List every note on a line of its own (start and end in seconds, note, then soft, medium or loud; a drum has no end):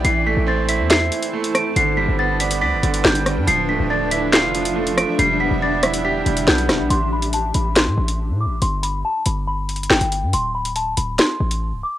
0.05 0.35 A1 loud
0.05 1.10 E3 medium
0.05 1.74 E4 medium
0.05 1.74 C5 medium
0.05 1.74 A5 medium
0.05 0.21 C7 loud
0.05 closed hi-hat medium
0.26 1.32 A3 medium
0.26 0.43 B6 medium
0.37 0.81 A1 loud
0.47 1.54 C4 loud
0.47 0.64 A6 medium
0.69 1.76 E4 medium
0.69 0.85 B6 medium
0.69 closed hi-hat loud
0.80 1.10 E2 loud
0.90 1.76 E5 medium
0.90 1.51 C7 medium
0.90 snare loud
0.90 clap medium
0.90 closed hi-hat medium
1.12 1.76 E3 medium
1.12 closed hi-hat medium
1.23 closed hi-hat medium
1.33 1.76 A3 medium
1.44 closed hi-hat medium
1.55 1.71 D7 medium
1.55 cross-stick medium
1.55 closed hi-hat medium
1.76 2.07 G1 loud
1.76 2.83 D3 loud
1.76 5.16 D4 medium
1.76 3.46 B4 medium
1.76 3.46 G5 medium
1.76 1.93 C7 loud
1.76 closed hi-hat medium
1.97 3.03 G3 medium
1.97 2.14 B6 medium
2.08 2.63 G1 loud
2.19 3.26 B3 medium
2.19 2.35 A6 medium
2.40 3.48 D4 medium
2.40 2.56 B6 medium
2.40 closed hi-hat medium
2.51 closed hi-hat medium
2.61 2.74 D2 loud
2.61 3.47 D5 loud
2.61 3.02 B6 medium
2.73 2.83 G1 loud
2.83 3.04 G1 loud
2.83 3.48 D3 medium
2.83 closed hi-hat medium
2.94 closed hi-hat medium
3.04 3.38 G1 loud
3.04 3.47 G3 medium
3.04 3.45 G6 medium
3.04 snare loud
3.04 clap medium
3.15 closed hi-hat medium
3.26 cross-stick medium
3.26 closed hi-hat medium
3.37 3.47 G2 loud
3.47 3.78 D1 loud
3.47 4.53 F3 loud
3.47 5.17 F3 medium
3.47 6.87 E5 medium
3.47 3.64 C7 loud
3.47 closed hi-hat medium
3.69 4.74 A3 medium
3.69 3.85 B6 medium
3.80 4.45 D1 loud
3.90 4.97 D4 medium
3.90 4.07 A6 medium
4.11 5.19 E4 medium
4.11 4.28 B6 medium
4.11 closed hi-hat medium
4.33 5.19 F4 loud
4.33 4.94 C7 medium
4.33 snare loud
4.33 clap medium
4.33 closed hi-hat medium
4.44 5.05 F1 loud
4.55 5.19 F3 medium
4.55 closed hi-hat medium
4.65 closed hi-hat medium
4.76 5.19 A3 medium
4.87 closed hi-hat medium
4.98 5.14 D7 medium
4.98 cross-stick loud
4.98 closed hi-hat medium
5.19 5.50 E1 loud
5.19 6.26 G3 loud
5.19 6.89 D4 medium
5.19 6.89 G4 medium
5.19 5.35 C7 loud
5.19 closed hi-hat medium
5.40 6.47 B3 medium
5.40 5.57 B6 medium
5.51 6.23 E1 loud
5.62 6.69 D4 medium
5.62 5.78 A6 medium
5.83 6.90 E4 medium
5.83 5.99 B6 medium
5.83 cross-stick loud
5.83 closed hi-hat medium
5.94 closed hi-hat medium
6.05 6.90 G4 loud
6.05 6.45 B6 medium
6.26 6.47 E1 loud
6.26 6.91 G3 medium
6.26 closed hi-hat medium
6.37 closed hi-hat medium
6.47 6.70 B1 loud
6.47 6.91 B3 medium
6.47 6.88 G6 medium
6.47 snare loud
6.47 clap medium
6.58 closed hi-hat medium
6.69 6.81 D1 loud
6.69 cross-stick medium
6.69 snare medium
6.69 closed hi-hat medium
6.80 6.90 B1 loud
6.90 7.52 A1 loud
6.90 7.07 C6 loud
6.90 closed hi-hat medium
7.13 7.29 B5 medium
7.22 closed hi-hat medium
7.33 7.50 A5 medium
7.33 closed hi-hat medium
7.54 7.88 A1 loud
7.54 7.71 B5 medium
7.54 closed hi-hat medium
7.76 8.37 C6 medium
7.76 snare loud
7.76 clap medium
7.76 closed hi-hat medium
7.87 7.97 A2 loud
7.97 8.31 A1 loud
8.08 closed hi-hat medium
8.30 8.47 A2 loud
8.40 8.57 D6 medium
8.46 8.61 A1 loud
8.62 9.03 G1 loud
8.62 8.78 C6 loud
8.62 closed hi-hat medium
8.83 8.99 B5 medium
8.83 closed hi-hat medium
9.05 9.21 A5 medium
9.26 9.88 G1 loud
9.26 9.42 B5 medium
9.26 closed hi-hat medium
9.47 9.88 B5 medium
9.69 closed hi-hat medium
9.76 closed hi-hat medium
9.83 closed hi-hat medium
9.90 10.01 G1 loud
9.90 10.31 G5 medium
9.90 snare loud
9.90 clap medium
10.01 10.24 G1 loud
10.01 closed hi-hat medium
10.12 closed hi-hat medium
10.22 10.33 G2 loud
10.33 10.95 D1 loud
10.33 10.50 C6 loud
10.33 closed hi-hat medium
10.55 10.71 B5 medium
10.65 closed hi-hat medium
10.76 10.92 A5 medium
10.76 closed hi-hat medium
10.97 11.18 D1 loud
10.97 11.14 B5 medium
10.97 closed hi-hat medium
11.19 11.79 C6 medium
11.19 snare loud
11.19 clap medium
11.19 closed hi-hat medium
11.40 11.74 A1 loud
11.51 closed hi-hat medium
11.72 11.83 C1 loud
11.83 11.98 D6 medium